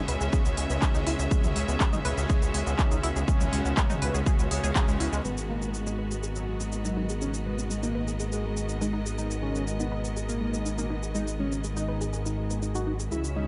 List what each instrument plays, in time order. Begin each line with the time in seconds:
Already playing: string section C#3 B3 C#4 F#4 G#4 E5
0.08 analog synth bass C#2, analog synth pad C#3 G#3 C#4, synth arpeggio sound B4, open hi-hat
0.21 analog synth bass C#2, synth arpeggio sound G#4, shaker
0.33 synth arpeggio sound G#4, kick, shaker
0.45 analog synth bass C#2, shaker
0.57 analog synth bass C#2, synth arpeggio sound G#3, open hi-hat
0.70 analog synth bass C#2, analog synth pad C#3 G#3 C#4, synth arpeggio sound B3, shaker
0.82 synth arpeggio sound D#4, kick, clap, shaker
0.95 analog synth bass C#2, synth arpeggio sound D#4, shaker
1.07 analog synth bass C#2, synth arpeggio sound E4, open hi-hat
1.19 analog synth bass C#2, synth arpeggio sound G#4, shaker
1.31 analog synth pad C#3 G#3 C#4, synth arpeggio sound G#3, kick, shaker
1.44 analog synth bass C#2, mid tom, shaker
1.56 analog synth bass C#2, synth arpeggio sound G#3, open hi-hat
1.68 analog synth bass C#2, synth arpeggio sound B3, shaker
1.80 synth arpeggio sound G#3, kick, clap, shaker
1.93 analog synth bass G#1, synth arpeggio sound D#4, mid tom, shaker
2.05 analog synth bass C#2, analog synth pad C#3 G#3 C#4, synth arpeggio sound B4, open hi-hat
2.18 analog synth bass C#2, synth arpeggio sound G#4, shaker
2.30 synth arpeggio sound G#4, kick, shaker
2.42 analog synth bass C#2, shaker
2.54 analog synth bass C#2, synth arpeggio sound G#3, open hi-hat
2.67 analog synth bass C#2, synth arpeggio sound B3, shaker
2.79 synth arpeggio sound D#4, kick, clap, shaker
2.91 analog synth bass C#2, synth arpeggio sound D#4, shaker
3.03 analog synth bass C#2, synth arpeggio sound E4, open hi-hat
3.16 analog synth bass C#2, synth arpeggio sound G#4, shaker
3.28 analog synth pad C#3 G#3 C#4, synth arpeggio sound G#3, kick, shaker
3.41 analog synth bass C#2, mid tom, shaker
3.53 analog synth bass C#2, synth arpeggio sound G#3, open hi-hat
3.65 analog synth bass C#2, synth arpeggio sound B3, shaker
3.77 synth arpeggio sound G#3, kick, clap, shaker
3.90 analog synth bass G#1, synth arpeggio sound D#4, mid tom, shaker
4.02 analog synth bass C#2, analog synth pad C#3 G#3 C#4, synth arpeggio sound B4, open hi-hat
4.14 analog synth bass C#2, synth arpeggio sound G#4, shaker
4.26 synth arpeggio sound G#4, kick, shaker
4.39 analog synth bass C#2, shaker
4.51 analog synth bass C#2, analog synth pad C#3 G#3 C#4, synth arpeggio sound G#3, open hi-hat
4.64 analog synth bass C#2, analog synth pad C#3 G#3 C#4, synth arpeggio sound G#4, shaker
4.76 synth arpeggio sound G#4, kick, clap, shaker
4.88 analog synth bass C#2, synth arpeggio sound G#3, shaker
5.00 analog synth bass C#2, synth arpeggio sound E4, open hi-hat
5.13 analog synth bass C#2, synth arpeggio sound G#3, shaker
5.25 analog synth bass G#1, analog synth pad G#2 D#3 G#3, synth arpeggio sound G#3, string section B3 G#4 A#4 D#5, analog synth lead B3, shaker
5.37 shaker
5.49 synth arpeggio sound G#3, analog synth lead A#3
5.62 synth arpeggio sound B3, shaker
5.74 synth arpeggio sound G#3, shaker
5.87 analog synth lead G#3, synth arpeggio sound D#4, shaker
5.99 synth arpeggio sound B4
6.11 synth arpeggio sound G#4, shaker
6.23 synth arpeggio sound G#4, shaker
6.36 analog synth lead F#3, string section D#5, shaker
6.48 synth arpeggio sound G#3
6.60 synth arpeggio sound B3, shaker
6.72 synth arpeggio sound D#4, shaker
6.85 analog synth lead F#3, synth arpeggio sound D#4, shaker
6.97 synth arpeggio sound D#4
7.09 synth arpeggio sound G#4, shaker
7.21 synth arpeggio sound G#3, analog synth lead C#4, shaker
7.34 shaker
7.46 synth arpeggio sound G#3, analog synth lead B3
7.58 synth arpeggio sound B3, shaker
7.71 synth arpeggio sound G#3, shaker
7.83 analog synth lead A#3, synth arpeggio sound D#4, shaker
7.95 synth arpeggio sound B4
8.08 synth arpeggio sound G#4, shaker
8.20 synth arpeggio sound G#4, shaker
8.32 analog synth lead G#3, shaker
8.44 synth arpeggio sound G#3
8.57 synth arpeggio sound B3, shaker
8.69 synth arpeggio sound D#4, shaker
8.81 analog synth lead G#3, synth arpeggio sound D#4, shaker
8.93 synth arpeggio sound D#4
9.06 synth arpeggio sound G#4, shaker
9.18 analog synth pad G#2 D#3 G#3, synth arpeggio sound G#3, analog synth lead D#4, shaker
9.31 shaker
9.43 synth arpeggio sound G#3, analog synth lead C#4
9.55 synth arpeggio sound B3, shaker
9.67 synth arpeggio sound G#3, shaker
9.80 analog synth lead B3, synth arpeggio sound D#4, shaker
9.92 synth arpeggio sound B4
10.04 synth arpeggio sound G#4, shaker
10.16 synth arpeggio sound G#4, shaker
10.29 analog synth lead A#3, shaker
10.41 synth arpeggio sound G#3
10.54 synth arpeggio sound B3, shaker
10.66 synth arpeggio sound D#4, shaker
10.78 analog synth lead A#3, synth arpeggio sound D#4, shaker
10.90 synth arpeggio sound D#4
11.03 synth arpeggio sound G#4, shaker
11.15 synth arpeggio sound G#3, analog synth lead D#4, shaker
11.27 shaker
11.39 synth arpeggio sound G#3, analog synth lead C#4
11.52 synth arpeggio sound B3, shaker
11.64 synth arpeggio sound G#3, shaker
11.77 synth arpeggio sound D#4, analog synth lead D#4, shaker
11.88 synth arpeggio sound B4
12.01 synth arpeggio sound G#4, shaker
12.13 synth arpeggio sound G#4, shaker
12.26 analog synth lead D#4, shaker
12.38 synth arpeggio sound G#3
12.50 synth arpeggio sound B3, shaker
12.62 synth arpeggio sound D#4, shaker
12.75 synth arpeggio sound D#4, analog synth lead F#4, shaker
12.87 synth arpeggio sound D#4
13.00 synth arpeggio sound G#4, shaker
13.11 analog synth bass C#2, analog synth pad C#3 G#3 C#4, synth arpeggio sound G#3, string section C#4 E4 F#4 E5, analog synth lead E4, shaker
13.24 string section B3, shaker
13.36 synth arpeggio sound G#3, analog synth lead D#4, string section E5